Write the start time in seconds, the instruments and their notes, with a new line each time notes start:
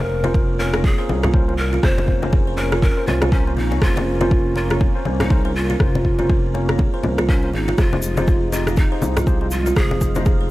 Already playing: analog synth bass F1, analog synth pad A#3 C#4, tine electric piano C#4 F4 A#4 C5, pan flute A#4
0.24 tine electric piano C#4 F4 A#4 C5, kalimba F4, high conga
0.34 kalimba C4, kick, muted conga
0.59 kalimba C4, tine electric piano C#4 F4 A#4 C#5, pan flute A#4, muted conga
0.74 kalimba D#4, cross-stick, high conga
0.84 kalimba G#4, pan flute G#4, kick, muted conga
0.98 tine electric piano C#4 F4 A#4 C5, kalimba C5
1.09 analog synth bass C2, high conga
1.23 kalimba F4, cross-stick, muted conga, low conga
1.34 tine electric piano C#4 F4 A#4 C5, kick
1.48 tine electric piano C#4 F4 A#4 C5, muted conga
1.58 pan flute A#4
1.73 kalimba F4, muted conga
1.83 analog synth bass F1, kalimba C4, tine electric piano C#4 F4 A#4 C5, pan flute C5, kick, cross-stick
1.98 muted conga, high conga
2.08 kalimba C4, kick
2.22 tine electric piano C#4 F4 A#4 C5, kalimba D#4, high conga
2.33 kalimba G#4, kick, muted conga
2.47 kalimba C5
2.58 tine electric piano C#4 F4 A#4 C#5, pan flute A#4, muted conga
2.72 kalimba F4, cross-stick, high conga
2.82 pan flute A#4, kick, muted conga, low conga
2.97 tine electric piano C#4 F4 A#4 C5
3.07 analog synth bass C2, pan flute F4, high conga, low conga
3.22 kalimba F4, cross-stick, muted conga, high conga
3.32 pan flute C#4, tine electric piano C#4 F4 A#4 C5, kick
3.47 tine electric piano C#4 F4 A#4 C5, muted conga
3.57 analog synth bass A#1, kalimba C4, pan flute D#4, high conga
3.71 analog synth bass C2, kalimba D#4, muted conga
3.82 analog synth bass F1, tine electric piano C#4 F4 A#4 C5, pan flute F4, kalimba G#4, kick, cross-stick
3.96 kalimba C5, muted conga, high conga
4.21 tine electric piano C#4 F4 A#4 C5, kalimba F4, high conga
4.31 kick, muted conga
4.56 tine electric piano C#4 F4 A#4 C#5, pan flute F4, muted conga
4.70 kalimba F4, cross-stick, high conga
4.81 kalimba C4, kick, muted conga
4.95 tine electric piano C#4 F4 A#4 C5
5.05 analog synth bass C2, kalimba C4, high conga
5.20 kalimba D#4, pan flute D#4, cross-stick, muted conga, low conga
5.30 tine electric piano C#4 F4 A#4 C5, kalimba G#4, kick
5.45 tine electric piano C#4 F4 A#4 C5, kalimba C5, muted conga
5.55 pan flute F4
5.70 kalimba F4, muted conga
5.80 analog synth bass F1, tine electric piano C#4 F4 A#4 C5, kick, cross-stick
5.95 muted conga, high conga
6.05 kick
6.19 tine electric piano C#4 F4 A#4 C5, kalimba F4, high conga
6.30 kalimba C4, kick, muted conga
6.54 kalimba C4, tine electric piano C#4 F4 A#4 C#5, muted conga
6.69 kalimba D#4, cross-stick, high conga
6.79 kalimba G#4, kick, muted conga, low conga
6.94 tine electric piano C#4 F4 A#4 C5, kalimba C5
7.03 analog synth bass C2, high conga, low conga
7.18 kalimba F4, cross-stick, muted conga, high conga
7.29 tine electric piano C#4 F4 A#4 C5, pan flute C#4, kick
7.43 tine electric piano C#4 F4 A#4 C5, muted conga
7.53 analog synth bass G#1, pan flute D#4, kalimba G#4, high conga
7.68 kalimba F4, muted conga
7.78 analog synth bass F1, analog synth pad F3 G#3 D#5 F5, tine electric piano D#4 G4 G#4 C5, pan flute F4, kick, cross-stick, shaker
7.93 muted conga, high conga
8.02 shaker
8.17 tine electric piano D#4 G4 G#4 C5, kalimba F4, high conga, shaker
8.27 kalimba C4, kick, muted conga, shaker
8.52 kalimba C4, tine electric piano D#4 G4 G#4 D#5, pan flute F4, muted conga, shaker
8.67 kalimba D#4, cross-stick, high conga, shaker
8.76 pan flute D#4, kalimba G#4, kick, muted conga, shaker
8.92 tine electric piano D#4 G4 G#4 C5, kalimba C5
9.02 analog synth bass C2, high conga, shaker
9.17 kalimba F4, cross-stick, muted conga, low conga, shaker
9.27 tine electric piano D#4 G4 G#4 C5, kick, shaker
9.41 tine electric piano D#4 G4 G#4 C5, muted conga
9.51 pan flute F4, shaker
9.66 kalimba F4, muted conga, shaker
9.76 analog synth bass F1, kalimba C4, tine electric piano D#4 F4 G#4 C5, pan flute G#4, kick, cross-stick, shaker
9.91 muted conga, high conga
10.01 kalimba C4, kick, shaker
10.15 kalimba D#4, tine electric piano D#4 G4 G#4 C5, high conga, shaker
10.25 kalimba G#4, kick, muted conga, shaker
10.41 kalimba C5